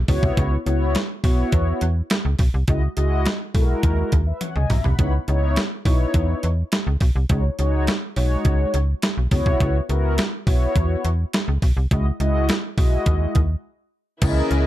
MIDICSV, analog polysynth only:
0, 0, Header, 1, 2, 480
1, 0, Start_track
1, 0, Tempo, 576923
1, 311, Time_signature, 4, 2, 24, 8
1, 12202, End_track
2, 0, Start_track
2, 0, Title_t, "Analog polysynth"
2, 0, Program_c, 0, 90
2, 66, Note_on_c, 0, 59, 89
2, 68, Note_on_c, 0, 64, 79
2, 71, Note_on_c, 0, 66, 78
2, 73, Note_on_c, 0, 73, 99
2, 453, Note_off_c, 0, 59, 0
2, 454, Note_off_c, 0, 64, 0
2, 455, Note_off_c, 0, 66, 0
2, 456, Note_off_c, 0, 73, 0
2, 545, Note_on_c, 0, 59, 88
2, 548, Note_on_c, 0, 64, 77
2, 549, Note_on_c, 0, 66, 77
2, 552, Note_on_c, 0, 73, 93
2, 805, Note_off_c, 0, 59, 0
2, 806, Note_off_c, 0, 64, 0
2, 807, Note_off_c, 0, 66, 0
2, 809, Note_off_c, 0, 73, 0
2, 1025, Note_on_c, 0, 59, 87
2, 1028, Note_on_c, 0, 64, 79
2, 1030, Note_on_c, 0, 66, 74
2, 1032, Note_on_c, 0, 73, 86
2, 1542, Note_off_c, 0, 59, 0
2, 1543, Note_off_c, 0, 64, 0
2, 1544, Note_off_c, 0, 66, 0
2, 1545, Note_off_c, 0, 73, 0
2, 2225, Note_on_c, 0, 56, 80
2, 2227, Note_on_c, 0, 64, 72
2, 2231, Note_on_c, 0, 66, 70
2, 2233, Note_on_c, 0, 75, 96
2, 2342, Note_off_c, 0, 56, 0
2, 2343, Note_off_c, 0, 64, 0
2, 2348, Note_off_c, 0, 66, 0
2, 2349, Note_off_c, 0, 75, 0
2, 2465, Note_on_c, 0, 56, 92
2, 2466, Note_on_c, 0, 64, 77
2, 2469, Note_on_c, 0, 66, 78
2, 2470, Note_on_c, 0, 75, 94
2, 2725, Note_off_c, 0, 56, 0
2, 2725, Note_off_c, 0, 64, 0
2, 2727, Note_off_c, 0, 66, 0
2, 2728, Note_off_c, 0, 75, 0
2, 2944, Note_on_c, 0, 56, 81
2, 2946, Note_on_c, 0, 64, 71
2, 2948, Note_on_c, 0, 66, 68
2, 2951, Note_on_c, 0, 69, 74
2, 3005, Note_off_c, 0, 69, 0
2, 3005, Note_on_c, 0, 70, 92
2, 3458, Note_off_c, 0, 70, 0
2, 3461, Note_off_c, 0, 56, 0
2, 3462, Note_off_c, 0, 64, 0
2, 3463, Note_off_c, 0, 66, 0
2, 3549, Note_on_c, 0, 76, 62
2, 3555, Note_on_c, 0, 71, 54
2, 3664, Note_off_c, 0, 76, 0
2, 3667, Note_off_c, 0, 71, 0
2, 3667, Note_on_c, 0, 78, 71
2, 3673, Note_on_c, 0, 73, 58
2, 3783, Note_off_c, 0, 78, 0
2, 3786, Note_off_c, 0, 73, 0
2, 3791, Note_on_c, 0, 80, 78
2, 3796, Note_on_c, 0, 75, 60
2, 3905, Note_off_c, 0, 80, 0
2, 3908, Note_off_c, 0, 75, 0
2, 3908, Note_on_c, 0, 82, 68
2, 3915, Note_on_c, 0, 76, 61
2, 4024, Note_off_c, 0, 82, 0
2, 4027, Note_off_c, 0, 76, 0
2, 4027, Note_on_c, 0, 83, 69
2, 4033, Note_on_c, 0, 78, 55
2, 4147, Note_on_c, 0, 59, 81
2, 4148, Note_on_c, 0, 63, 73
2, 4151, Note_on_c, 0, 64, 82
2, 4154, Note_on_c, 0, 73, 91
2, 4257, Note_off_c, 0, 83, 0
2, 4260, Note_off_c, 0, 78, 0
2, 4264, Note_off_c, 0, 59, 0
2, 4265, Note_off_c, 0, 63, 0
2, 4268, Note_off_c, 0, 64, 0
2, 4270, Note_off_c, 0, 73, 0
2, 4389, Note_on_c, 0, 59, 85
2, 4390, Note_on_c, 0, 63, 79
2, 4392, Note_on_c, 0, 64, 79
2, 4394, Note_on_c, 0, 73, 96
2, 4647, Note_off_c, 0, 59, 0
2, 4648, Note_off_c, 0, 63, 0
2, 4649, Note_off_c, 0, 64, 0
2, 4650, Note_off_c, 0, 73, 0
2, 4865, Note_on_c, 0, 59, 74
2, 4867, Note_on_c, 0, 63, 72
2, 4869, Note_on_c, 0, 64, 73
2, 4871, Note_on_c, 0, 73, 91
2, 5382, Note_off_c, 0, 59, 0
2, 5383, Note_off_c, 0, 63, 0
2, 5384, Note_off_c, 0, 64, 0
2, 5385, Note_off_c, 0, 73, 0
2, 6067, Note_on_c, 0, 56, 83
2, 6069, Note_on_c, 0, 63, 76
2, 6071, Note_on_c, 0, 66, 73
2, 6073, Note_on_c, 0, 73, 87
2, 6183, Note_off_c, 0, 56, 0
2, 6185, Note_off_c, 0, 63, 0
2, 6187, Note_off_c, 0, 66, 0
2, 6189, Note_off_c, 0, 73, 0
2, 6308, Note_on_c, 0, 56, 87
2, 6310, Note_on_c, 0, 63, 83
2, 6313, Note_on_c, 0, 66, 78
2, 6315, Note_on_c, 0, 73, 95
2, 6567, Note_off_c, 0, 56, 0
2, 6567, Note_off_c, 0, 63, 0
2, 6569, Note_off_c, 0, 66, 0
2, 6570, Note_off_c, 0, 73, 0
2, 6788, Note_on_c, 0, 56, 79
2, 6790, Note_on_c, 0, 63, 67
2, 6792, Note_on_c, 0, 66, 73
2, 6793, Note_on_c, 0, 73, 92
2, 7303, Note_off_c, 0, 56, 0
2, 7304, Note_off_c, 0, 63, 0
2, 7305, Note_off_c, 0, 66, 0
2, 7306, Note_off_c, 0, 73, 0
2, 7746, Note_on_c, 0, 59, 90
2, 7749, Note_on_c, 0, 64, 85
2, 7751, Note_on_c, 0, 66, 83
2, 7753, Note_on_c, 0, 73, 98
2, 8133, Note_off_c, 0, 59, 0
2, 8134, Note_off_c, 0, 64, 0
2, 8135, Note_off_c, 0, 66, 0
2, 8136, Note_off_c, 0, 73, 0
2, 8224, Note_on_c, 0, 59, 88
2, 8227, Note_on_c, 0, 64, 79
2, 8229, Note_on_c, 0, 66, 86
2, 8231, Note_on_c, 0, 70, 96
2, 8485, Note_off_c, 0, 59, 0
2, 8486, Note_off_c, 0, 64, 0
2, 8487, Note_off_c, 0, 66, 0
2, 8488, Note_off_c, 0, 70, 0
2, 8706, Note_on_c, 0, 59, 79
2, 8708, Note_on_c, 0, 64, 76
2, 8711, Note_on_c, 0, 66, 74
2, 8712, Note_on_c, 0, 73, 86
2, 9222, Note_off_c, 0, 59, 0
2, 9223, Note_off_c, 0, 64, 0
2, 9225, Note_off_c, 0, 66, 0
2, 9225, Note_off_c, 0, 73, 0
2, 9909, Note_on_c, 0, 56, 81
2, 9912, Note_on_c, 0, 64, 75
2, 9915, Note_on_c, 0, 66, 78
2, 9918, Note_on_c, 0, 75, 95
2, 10026, Note_off_c, 0, 56, 0
2, 10028, Note_off_c, 0, 64, 0
2, 10032, Note_off_c, 0, 66, 0
2, 10034, Note_off_c, 0, 75, 0
2, 10148, Note_on_c, 0, 56, 90
2, 10151, Note_on_c, 0, 64, 83
2, 10153, Note_on_c, 0, 66, 81
2, 10155, Note_on_c, 0, 75, 96
2, 10406, Note_off_c, 0, 56, 0
2, 10408, Note_off_c, 0, 64, 0
2, 10409, Note_off_c, 0, 66, 0
2, 10410, Note_off_c, 0, 75, 0
2, 10626, Note_on_c, 0, 56, 80
2, 10628, Note_on_c, 0, 64, 71
2, 10630, Note_on_c, 0, 66, 72
2, 10634, Note_on_c, 0, 75, 88
2, 11142, Note_off_c, 0, 56, 0
2, 11143, Note_off_c, 0, 64, 0
2, 11144, Note_off_c, 0, 66, 0
2, 11146, Note_off_c, 0, 75, 0
2, 11826, Note_on_c, 0, 61, 81
2, 11829, Note_on_c, 0, 64, 76
2, 11830, Note_on_c, 0, 68, 77
2, 11831, Note_on_c, 0, 70, 75
2, 11832, Note_on_c, 0, 73, 75
2, 11886, Note_off_c, 0, 73, 0
2, 11886, Note_on_c, 0, 75, 90
2, 12202, Note_off_c, 0, 61, 0
2, 12202, Note_off_c, 0, 64, 0
2, 12202, Note_off_c, 0, 68, 0
2, 12202, Note_off_c, 0, 70, 0
2, 12202, Note_off_c, 0, 75, 0
2, 12202, End_track
0, 0, End_of_file